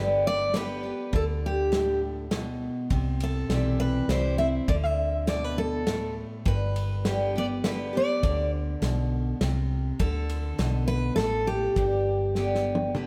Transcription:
Already playing: G1 G2 D3 G3 B3 G4 B4
0.27 D5
0.54 D3 G3 B3 G4 B4, snare, ride
0.83 B3 G4
1.13 D2 D3 A4, kick, ride
1.46 G4
1.72 A2, snare, ride
2.31 B2, snare, ride
2.90 C2 C3, kick, ride
3.20 A4, ride
3.49 B1 E3 G3 C4 E4, snare, ride
3.80 B4
4.08 C2 E3 G3 C4 E4 C5, snare, ride
4.38 C4 E4 E5
4.68 D2 D3 D5, kick, ride
4.84 E5
5.27 B2 D5, snare, ride
5.44 B4
5.58 A4
5.87 A2, snare, ride
6.45 G1 G2 B4, kick, ride
6.76 ride
7.05 D3 G3 B3 G4, snare, ride
7.36 B3 G4 D5
7.64 D3 G3 B3 G4 B4, snare, ride
7.93 B3 G4
7.97 D5
8.23 D2 D3, kick, ride
8.82 B1 B2, snare, ride
9.41 C2 C3, snare, ride
9.99 D2 D3 A4, kick, ride
10.29 ride
10.59 B1 B2, snare, ride
10.88 B4
11.16 A1 A2 A4, snare, ride
11.47 G4
11.76 G1 G2, kick, ride
12.35 D3 G3 B3 G4, snare
12.55 snare
12.75 high tom
12.95 D3 G3 B3 G4, mid tom

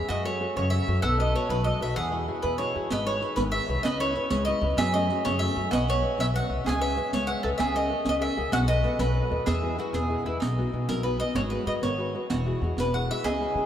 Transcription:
0.08 F#2 F#3 F#4 D#5
0.24 F#4 A4 C#5
0.41 F#4 A4 C#5
0.56 F#2 C#3 C#5
0.70 F#4 A4 C#5 E5
0.88 F#2 F#4 A4 C#5
1.02 B1 B3 A4 F#5
1.18 F#4 B4 D#5
1.34 F#4 B4 C#5 D#5
1.49 B1 F#3 B4
1.64 F#4 B4 D#5
1.80 B1 F#4 B4 D#5 E5
1.96 E2 E3 G#4 F#5
2.12 E4 F#4 G#4
2.28 E4 F#4 G#4
2.43 E2 B2 B4
2.58 E4 F#4 G#4 C#5
2.75 E2 E4 F#4 G#4
2.90 G#1 G#3 B4 D#5, riq
3.06 D#4 G#4 B4 C#5
3.21 D#4 G#4 B4, riq
3.36 G#1 D#3 B4, riq
3.52 D#3 G#4 B4 E5
3.69 C2 D#4 G#4 B4
3.83 C#2 C#3 B4 D#5, riq
4.00 C#4 E4 B4 C#5
4.15 C#4 E4 B4, riq
4.30 C#2 G#3 C#5, riq
4.45 C#4 E4 B4 D#5
4.61 C#2 C#4 E4 B4
4.77 F#2 F#3 G#4 E5, riq
4.94 A3 C#4 F#4 D#5
5.10 A3 C#4 F#4, riq
5.25 F#2 C#3 C#5, riq
5.38 A3 C#4 F#4 E5
5.54 F#2 C#4 F#4 A4
5.71 B1 B3 F#4 D#5, riq
5.88 B4 C#5 D#5, riq
6.02 B4 C#5 D#5
6.18 B1 F#3 E5, riq
6.33 B4 C#5 D#5 F#5
6.48 C2 B4 C#5 D#5
6.64 C#2 C#4 G#4, riq
6.69 G#5
6.80 B4 C#5 E5
6.96 B4 C#5 E5, riq
7.13 C#2 G#3 C#5, riq
7.27 B4 C#5 E5 F#5
7.43 C#2 A4 B4 C#5 E5
7.58 C#2 C#4 G#4 E5, riq
7.74 G#4 A#4 D#5 F#5
7.89 G#4 A#4 F#5
8.05 C#2 C#4, riq
8.09 D#5
8.20 G#4 A#4 E5 F#5
8.37 C#2 G#4 A#4 F#5
8.52 B1 B3 F#4 F#5, riq
8.68 A4 B4 D#5
8.83 A4 B4 D#5, riq
8.99 B1 F#3 B4, riq
9.14 A4 B4 D#5
9.31 D#2 A4 B4 D#5
9.46 E2 E3 G#4 E5, riq
9.62 E4 G#4 B4
9.78 E4 F#4 G#4 B4, riq
9.93 E2 B2 G#4, riq
10.10 E4 G#4 B4
10.26 E2 E4 G#4 B4
10.40 B1 B2 D#4, riq
10.58 B3 D#4 F#4
10.73 B2 B3 D#4 F#4
10.88 B1 F#3 A#4, riq
11.03 B3 D#4 F#4 B4
11.20 B3 D#4 F#4 D#5
11.35 G#1 G#3 F#4 C#5, riq
11.50 F#4 G#4 B4
11.66 G#2 F#4 G#4 B4 D#5
11.82 G#1 D#3 C#5, riq
11.98 F#4 G#4 B4
12.14 F#4 G#4 B4
12.30 E1 E3 F#4, riq
12.46 E4 F#4 G#4
12.61 E2 E4 F#4 G#4
12.77 E1 B2 B4, riq
12.94 E4 F#4 G#4 F#5
13.11 E4 F#4 G#4 E5
13.24 C#2 C#3 G#4 D#5, riq
13.41 C#4 E4 G#4
13.55 C#3 C#4 E4 G#4

